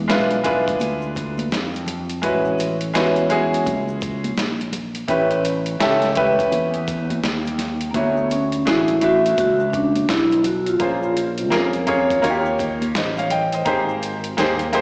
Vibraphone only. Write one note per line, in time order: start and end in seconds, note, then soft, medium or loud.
0.00 0.28 G#3 medium
7.91 7.95 A#3 medium
7.97 8.32 B3 medium
8.32 8.68 C#4 medium
8.68 9.00 E4 loud
9.04 9.36 F#4 loud
9.40 9.70 F#4 loud
9.70 9.74 C#4 medium
9.75 10.08 D4 medium
10.10 10.46 E4 medium
10.46 10.69 F#4 medium
10.69 11.71 F4 medium